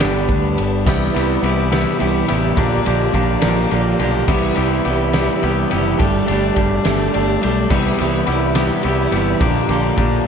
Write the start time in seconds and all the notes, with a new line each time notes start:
Already playing: G4 B4 D5 B5
0.00 G1 G2 D3 G3 B3 D4 G4, snare, ride
0.28 D2, kick, ride
0.58 G1, ride
0.85 C2 C3 E3 G3 B3 E4 G4 B4 E5 B5, kick, crash
1.13 C2 C3 E3 G3 B3 E4 G4, ride
1.42 C2 C3 E3 G3 B3 E4, ride
1.46 G4
1.71 C3 E3 G3 B3 E4 G4, snare, ride
1.98 C2 C3 E3 G3 B3 E4 G4, ride
2.28 A1 C3 E3 G3 B3 E4 G4, ride
2.55 A#1 A#2 D3 F3 A#3 D4 G4 F5, kick, ride
2.60 D5 A#5
2.85 A#1 A#2 D3 F3 A#3 D4 G4, ride
3.13 A#1 A#2 D3 F3 A#3 D4 G4, kick, ride
3.40 A#1 A#2 D3 F3 A#3 D4 G4, snare, ride
3.69 A#1 A#2 D3 F3 A#3 D4 G4, ride
3.98 B1 A#2 D3 F3 A#3 D4 G4, ride
4.28 C2 C3 E3 G3 B3 E4 G4 B4 E5 B5, kick, crash
4.55 C2 C3 E3 G3 B3 E4 G4, ride
4.84 C2 C3 E3 G3 B3 E4 G4, ride
5.12 C3 E3 G3 B3 E4 G4, snare, ride
5.41 C2 C3 E3 G3 B3 E4 G4, ride
5.69 F#1 C3 E3 G3 B3 E4 G4, ride
5.98 G1 G3 A3 D4 G4 A4 D5 A5, kick, ride
6.26 G1 G3 A3 D4 G4, ride
6.31 G3 A3 D4 G4
6.56 G1 G3 A3 D4 G4, kick, ride
6.84 G1 G3 A3 D4 G4, snare, ride
7.13 G1 G3 A3 D4 G4, ride
7.42 B1 G3 A3 D4 G4, ride
7.70 C2 C3 E3 G3 B3 E4 G4 B4 E5 B5, kick, crash
7.98 C2 C3 E3 G3 B3 E4 G4, ride
8.26 C2 C3 E3 G3 B3 E4 G4, ride
8.54 C3 E3 G3 B3 E4 G4, snare, ride
8.83 C2 C3 E3 G3 B3 E4 G4, ride
9.11 G1 C3 E3 G3 B3 E4 G4, ride
9.40 A#1 A#2 D3 F3 A#3 D4 G4 D5 F5 A#5, kick, ride
9.68 A#1 A#2 D3 F3 A#3 D4 G4, ride
9.96 A#1 A#2 D3 F3 A#3 D4 G4, kick, ride